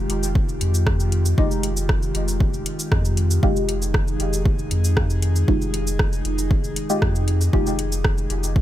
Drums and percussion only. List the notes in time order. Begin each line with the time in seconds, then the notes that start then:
0.10 closed hi-hat
0.23 cabasa
0.35 kick
0.49 cabasa
0.61 closed hi-hat
0.74 cabasa
0.87 kick, cross-stick
1.00 cabasa
1.12 closed hi-hat
1.26 cabasa
1.38 kick
1.51 cabasa
1.63 closed hi-hat
1.77 cabasa
1.89 kick, cross-stick
2.02 cabasa
2.15 closed hi-hat
2.28 cabasa
2.40 kick
2.54 cabasa
2.66 closed hi-hat
2.79 cabasa
2.92 kick, cross-stick
3.05 cabasa
3.17 closed hi-hat
3.31 cabasa
3.43 kick
3.56 cabasa
3.69 closed hi-hat
3.82 cabasa
3.94 kick, cross-stick
4.08 cabasa
4.20 closed hi-hat
4.33 cabasa
4.46 kick
4.59 cabasa
4.71 closed hi-hat
4.84 cabasa
4.97 kick, cross-stick
5.10 cabasa
5.22 closed hi-hat
5.36 cabasa
5.48 kick
5.62 cabasa
5.74 closed hi-hat
5.87 cabasa
5.99 kick, cross-stick
6.13 cabasa
6.25 closed hi-hat
6.38 cabasa
6.51 kick
6.64 cabasa
6.76 closed hi-hat
6.90 cabasa
7.02 kick, cross-stick
7.15 cabasa
7.28 closed hi-hat
7.41 cabasa
7.53 kick
7.67 cabasa
7.79 closed hi-hat
7.92 cabasa
8.04 kick, cross-stick
8.18 cabasa
8.30 closed hi-hat
8.43 cabasa
8.56 kick